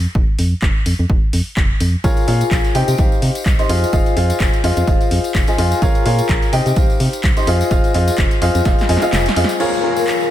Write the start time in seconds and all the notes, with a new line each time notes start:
0.15 F1, kick
0.39 F2, open hi-hat
0.62 F1, kick, clap
0.86 F2, open hi-hat
0.99 F2
1.10 F1, kick
1.33 F2, open hi-hat
1.57 F1, kick, clap
1.80 F2, open hi-hat
2.04 A#1 F4 G#4 A#4 C#5 F5, kick, closed hi-hat, tambourine
2.17 closed hi-hat, tambourine
2.28 A#2 F4 G#4 A#4 C#5 F5, open hi-hat
2.41 closed hi-hat, tambourine
2.51 A#1, kick, clap, closed hi-hat, tambourine
2.64 closed hi-hat, tambourine
2.75 C3 D#4 G4 C5 D#5 G5, open hi-hat
2.88 C3, closed hi-hat, tambourine
2.98 C2 D#4 G4 C5 D#5 F5, kick, closed hi-hat, tambourine
3.12 tambourine
3.22 C3, open hi-hat
3.35 closed hi-hat, tambourine
3.46 C2, kick, clap, closed hi-hat, tambourine
3.59 D#4 G4 C5 D#5 C6, closed hi-hat, tambourine
3.69 F2 F4 G#4 C5 D#5 F5, open hi-hat
3.84 tambourine
3.93 F1 F4 G#4 C5 D#5 F5, kick, closed hi-hat, tambourine
4.06 closed hi-hat, tambourine
4.17 F2 F4 G#4 C5 D#5 F5, open hi-hat
4.30 closed hi-hat, tambourine
4.40 F1, kick, clap, closed hi-hat, tambourine
4.54 closed hi-hat, tambourine
4.64 F2 F4 G#4 C5 D#5 F5, open hi-hat
4.77 F2, closed hi-hat, tambourine
4.88 F1 F4 G#4 C5 D#5 F5, kick, closed hi-hat, tambourine
5.01 closed hi-hat, tambourine
5.11 F2, open hi-hat
5.24 closed hi-hat, tambourine
5.35 F1, kick, clap, closed hi-hat, tambourine
5.47 F4 G#4 C5 D#5 G#5, closed hi-hat, tambourine
5.58 F2 F4 G#4 C5 D#5 F5, open hi-hat
5.72 tambourine
5.82 A#1 F4 G#4 A#4 C#5 F5, kick, closed hi-hat, tambourine
5.95 closed hi-hat, tambourine
6.06 A#2 F4 G#4 A#4 C#5 F5, open hi-hat
6.19 closed hi-hat, tambourine
6.29 A#1, kick, clap, closed hi-hat, tambourine
6.42 closed hi-hat, tambourine
6.53 C3 D#4 G4 C5 D#5 G5, open hi-hat
6.66 C3, closed hi-hat, tambourine
6.76 C2 D#4 G4 C5 D#5 F5, kick, closed hi-hat, tambourine
6.90 tambourine
7.00 C3, open hi-hat
7.13 closed hi-hat, tambourine
7.23 C2, kick, clap, closed hi-hat, tambourine
7.37 D#4 G4 C5 D#5 C6, closed hi-hat, tambourine
7.47 F2 F4 G#4 C5 D#5 F5, open hi-hat
7.61 tambourine
7.71 F1 F4 G#4 C5 D#5 F5, kick, closed hi-hat, tambourine
7.84 closed hi-hat, tambourine
7.94 F2 F4 G#4 C5 D#5 F5, open hi-hat
8.08 closed hi-hat, tambourine
8.18 F1, kick, clap, closed hi-hat, tambourine
8.31 closed hi-hat, tambourine
8.42 F2 F4 G#4 C5 D#5 F5, open hi-hat
8.55 F2, closed hi-hat, tambourine
8.65 F1 F4 G#4 C5 D#5 F5, kick, snare, closed hi-hat, tambourine
8.79 snare, closed hi-hat, tambourine
8.89 F2 F4 G#4 C5 D#5 G#5, open hi-hat
8.97 snare
9.02 F4 G#4 C5 D#5 F5, closed hi-hat, tambourine
9.13 F1, snare, clap, closed hi-hat, tambourine
9.26 snare, closed hi-hat, tambourine
9.36 F2 F4 G#4 C5 D#5 F5, open hi-hat
9.44 snare
9.49 tambourine
9.60 F4 G#4 A#4 C#5 F5 A#5, crash, tambourine, downlifter
9.74 tambourine
9.84 F4 G#4 A#4 C#5 F5
9.97 tambourine
10.07 clap, tambourine
10.20 tambourine